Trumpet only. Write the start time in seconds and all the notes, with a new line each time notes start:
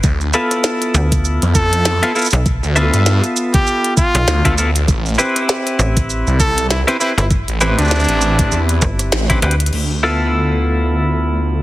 1.55 A4
3.54 G4
3.97 F4
6.39 A4
6.70 E4
6.87 E4
7.00 E4
7.17 E4
7.78 D4